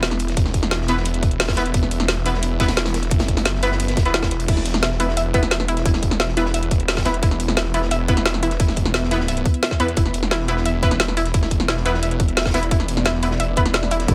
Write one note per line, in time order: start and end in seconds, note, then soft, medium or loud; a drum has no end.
0.00 0.36 E1 loud
0.00 14.14 B3 medium
0.00 14.14 E4 medium
0.00 4.46 E5 medium
0.00 snare loud
0.00 closed hi-hat medium
0.11 snare soft
0.19 closed hi-hat medium
0.28 snare soft
0.28 closed hi-hat soft
0.36 1.73 E1 loud
0.36 kick loud
0.36 closed hi-hat medium
0.36 closed hi-hat loud
0.46 snare soft
0.54 kick medium
0.54 closed hi-hat medium
0.63 snare medium
0.71 snare loud
0.71 closed hi-hat medium
0.71 closed hi-hat loud
0.81 snare medium
0.88 0.96 B3 loud
0.88 0.96 E4 medium
0.88 0.96 B4 loud
0.88 snare soft
0.88 closed hi-hat medium
0.97 snare soft
1.05 closed hi-hat medium
1.14 closed hi-hat soft
1.23 kick loud
1.23 closed hi-hat medium
1.31 closed hi-hat soft
1.40 snare loud
1.40 closed hi-hat medium
1.43 snare medium
1.43 closed hi-hat medium
1.48 kick medium
1.48 snare soft
1.48 snare medium
1.48 closed hi-hat medium
1.53 snare medium
1.53 closed hi-hat medium
1.56 1.61 B3 medium
1.56 1.61 E4 medium
1.56 1.61 B4 medium
1.56 snare loud
1.56 closed hi-hat medium
1.66 closed hi-hat soft
1.74 3.10 E1 loud
1.74 kick loud
1.74 closed hi-hat medium
1.83 snare soft
1.91 closed hi-hat medium
2.00 snare medium
2.08 snare loud
2.08 closed hi-hat loud
2.17 snare soft
2.26 2.30 B3 medium
2.26 2.30 E4 medium
2.26 2.30 B4 medium
2.26 closed hi-hat medium
2.34 snare soft
2.42 closed hi-hat medium
2.60 2.64 B3 medium
2.60 2.64 E4 medium
2.60 2.64 B4 loud
2.60 kick loud
2.60 snare loud
2.60 closed hi-hat medium
2.68 snare loud
2.68 snare medium
2.68 closed hi-hat medium
2.68 closed hi-hat soft
2.76 snare loud
2.76 closed hi-hat medium
2.76 closed hi-hat loud
2.85 snare loud
2.85 snare soft
2.85 closed hi-hat medium
2.94 snare loud
2.94 closed hi-hat medium
3.03 snare soft
3.03 closed hi-hat soft
3.10 3.96 F#1 loud
3.10 kick loud
3.10 closed hi-hat medium
3.10 closed hi-hat loud
3.19 snare loud
3.19 snare soft
3.19 closed hi-hat medium
3.28 kick medium
3.28 snare soft
3.28 closed hi-hat medium
3.37 snare medium
3.37 closed hi-hat medium
3.45 snare loud
3.45 closed hi-hat medium
3.45 closed hi-hat loud
3.54 snare medium
3.63 3.70 B3 loud
3.63 3.70 E4 medium
3.63 3.70 B4 loud
3.63 snare soft
3.63 closed hi-hat medium
3.72 snare medium
3.80 closed hi-hat medium
3.88 snare medium
3.88 closed hi-hat soft
3.97 4.47 E1 loud
3.97 kick loud
3.97 snare loud
3.97 closed hi-hat medium
4.05 4.98 B3 medium
4.05 4.98 E4 medium
4.05 4.98 B4 medium
4.05 snare soft
4.05 closed hi-hat soft
4.14 snare loud
4.14 closed hi-hat loud
4.14 closed hi-hat medium
4.22 kick medium
4.22 snare soft
4.22 snare loud
4.22 closed hi-hat medium
4.31 snare soft
4.31 closed hi-hat medium
4.40 closed hi-hat soft
4.40 closed hi-hat medium
4.48 5.84 E1 loud
4.48 4.55 E4 medium
4.48 9.95 B4 medium
4.48 kick loud
4.48 closed hi-hat medium
4.48 closed hi-hat loud
4.48 crash medium
4.57 snare soft
4.66 closed hi-hat medium
4.74 snare medium
4.83 4.93 E5 medium
4.83 snare loud
4.83 closed hi-hat loud
4.83 closed hi-hat medium
4.92 snare soft
5.00 5.04 B3 medium
5.00 5.04 E4 medium
5.00 5.11 E4 medium
5.00 5.04 B4 medium
5.00 closed hi-hat medium
5.08 snare soft
5.17 5.33 E5 medium
5.17 closed hi-hat medium
5.17 closed hi-hat loud
5.34 5.39 B3 medium
5.34 5.39 E4 medium
5.34 5.39 B4 loud
5.34 kick loud
5.34 closed hi-hat medium
5.43 snare medium
5.43 closed hi-hat soft
5.51 5.62 E5 medium
5.51 snare loud
5.51 closed hi-hat medium
5.60 snare medium
5.68 5.79 E4 loud
5.68 closed hi-hat medium
5.77 snare soft
5.77 closed hi-hat soft
5.86 7.21 E1 loud
5.86 5.92 E4 medium
5.86 kick loud
5.86 closed hi-hat medium
5.94 snare soft
6.03 kick medium
6.03 closed hi-hat medium
6.11 snare medium
6.20 6.30 E5 medium
6.20 snare loud
6.20 closed hi-hat loud
6.20 closed hi-hat medium
6.28 snare medium
6.37 6.44 B3 medium
6.37 6.48 E4 medium
6.37 6.44 E4 medium
6.37 6.44 B4 loud
6.37 snare soft
6.37 closed hi-hat medium
6.46 snare medium
6.54 6.70 E5 medium
6.54 closed hi-hat medium
6.63 closed hi-hat soft
6.71 kick loud
6.71 closed hi-hat medium
6.80 closed hi-hat soft
6.88 6.99 E5 medium
6.88 snare medium
6.88 snare loud
6.88 closed hi-hat loud
6.88 closed hi-hat medium
6.91 snare medium
6.91 closed hi-hat medium
6.97 kick medium
6.97 snare medium
6.97 snare soft
6.97 closed hi-hat medium
7.01 snare medium
7.01 closed hi-hat medium
7.05 7.10 B3 medium
7.05 7.16 E4 loud
7.05 7.10 E4 medium
7.05 7.10 B4 loud
7.05 snare loud
7.05 closed hi-hat medium
7.14 closed hi-hat soft
7.23 8.58 E1 loud
7.23 7.29 E4 medium
7.23 kick loud
7.23 closed hi-hat medium
7.23 closed hi-hat loud
7.31 snare soft
7.40 closed hi-hat medium
7.48 snare medium
7.57 7.68 E5 medium
7.57 snare loud
7.57 closed hi-hat loud
7.57 closed hi-hat medium
7.65 snare soft
7.74 7.79 B3 medium
7.74 7.79 E4 medium
7.74 7.85 E4 medium
7.74 7.79 B4 medium
7.74 closed hi-hat medium
7.82 snare soft
7.91 8.07 E5 medium
7.91 closed hi-hat medium
8.08 8.13 B3 medium
8.08 8.13 E4 medium
8.08 8.13 B4 loud
8.08 kick loud
8.08 closed hi-hat medium
8.17 snare medium
8.17 closed hi-hat soft
8.26 8.36 E5 medium
8.26 snare loud
8.26 closed hi-hat medium
8.34 snare medium
8.42 8.53 E4 loud
8.42 closed hi-hat medium
8.50 snare soft
8.50 closed hi-hat soft
8.60 9.44 E1 loud
8.60 8.66 E4 medium
8.60 kick loud
8.60 closed hi-hat medium
8.68 snare soft
8.76 kick medium
8.76 closed hi-hat medium
8.86 snare medium
8.94 9.05 E5 medium
8.94 snare loud
8.94 closed hi-hat medium
9.03 snare medium
9.11 9.18 B3 medium
9.11 9.18 E4 medium
9.11 9.22 E4 medium
9.11 9.18 B4 loud
9.11 snare soft
9.11 closed hi-hat medium
9.20 snare soft
9.28 9.44 E5 medium
9.28 closed hi-hat medium
9.37 closed hi-hat soft
9.45 kick loud
9.45 closed hi-hat medium
9.54 closed hi-hat soft
9.63 9.69 E5 medium
9.63 snare loud
9.63 closed hi-hat medium
9.71 kick medium
9.71 snare soft
9.80 9.96 E2 loud
9.80 9.84 B3 medium
9.80 9.84 E4 medium
9.80 9.84 B4 loud
9.80 9.90 B4 medium
9.80 closed hi-hat medium
9.88 closed hi-hat soft
9.96 11.33 E1 loud
9.96 10.03 E4 medium
9.96 14.14 D5 medium
9.96 kick loud
9.96 closed hi-hat medium
10.06 snare soft
10.14 closed hi-hat medium
10.23 snare medium
10.31 10.47 E4 loud
10.31 snare loud
10.31 closed hi-hat medium
10.40 snare soft
10.48 10.53 B3 medium
10.48 10.59 E4 medium
10.48 10.53 E4 medium
10.48 10.53 B4 medium
10.48 closed hi-hat medium
10.57 snare soft
10.66 10.82 E5 medium
10.66 closed hi-hat medium
10.83 10.87 B3 medium
10.83 10.87 E4 medium
10.83 10.87 B4 loud
10.83 kick loud
10.83 closed hi-hat medium
10.91 snare medium
10.91 closed hi-hat soft
11.00 11.10 E5 medium
11.00 snare loud
11.00 closed hi-hat medium
11.00 closed hi-hat loud
11.08 snare soft
11.17 11.28 E4 loud
11.17 closed hi-hat medium
11.25 snare soft
11.25 closed hi-hat soft
11.34 12.70 E1 loud
11.34 11.40 E4 medium
11.34 kick loud
11.34 closed hi-hat medium
11.43 snare soft
11.51 kick medium
11.51 closed hi-hat medium
11.60 snare medium
11.68 11.84 E4 loud
11.68 snare loud
11.68 closed hi-hat loud
11.68 closed hi-hat medium
11.76 snare medium
11.85 11.93 B3 medium
11.85 11.93 E4 medium
11.85 11.96 E4 medium
11.85 11.93 B4 loud
11.85 snare soft
11.85 closed hi-hat medium
11.94 snare soft
12.03 12.19 E5 medium
12.03 closed hi-hat medium
12.11 closed hi-hat soft
12.20 kick loud
12.20 closed hi-hat medium
12.28 closed hi-hat soft
12.37 12.48 E5 medium
12.37 snare medium
12.37 snare loud
12.37 closed hi-hat medium
12.41 snare loud
12.41 closed hi-hat medium
12.45 kick medium
12.45 snare soft
12.45 snare medium
12.45 closed hi-hat medium
12.50 snare loud
12.50 closed hi-hat medium
12.54 12.59 B3 medium
12.54 12.59 E4 medium
12.54 12.65 E4 loud
12.54 12.59 B4 loud
12.54 snare loud
12.54 closed hi-hat medium
12.63 closed hi-hat soft
12.71 14.07 E1 loud
12.71 12.78 E4 medium
12.71 kick loud
12.71 closed hi-hat medium
12.80 snare soft
12.88 closed hi-hat medium
12.97 snare medium
13.04 13.22 E4 loud
13.04 snare loud
13.04 closed hi-hat medium
13.04 closed hi-hat loud
13.14 snare soft
13.23 13.27 B3 medium
13.23 13.33 E4 medium
13.23 13.27 E4 medium
13.23 13.27 B4 medium
13.23 closed hi-hat medium
13.31 snare soft
13.40 13.56 E5 medium
13.40 closed hi-hat medium
13.40 closed hi-hat loud
13.56 13.61 B3 medium
13.56 13.61 E4 medium
13.56 13.61 B4 loud
13.56 kick loud
13.56 closed hi-hat medium
13.66 snare medium
13.66 closed hi-hat soft
13.74 13.85 E5 medium
13.74 snare loud
13.74 closed hi-hat medium
13.74 closed hi-hat loud
13.83 snare soft
13.91 14.02 E4 loud
13.91 closed hi-hat medium
14.00 snare soft
14.00 closed hi-hat soft
14.08 14.14 F#1 loud
14.08 14.14 E4 medium
14.08 kick loud
14.08 closed hi-hat medium
14.08 closed hi-hat loud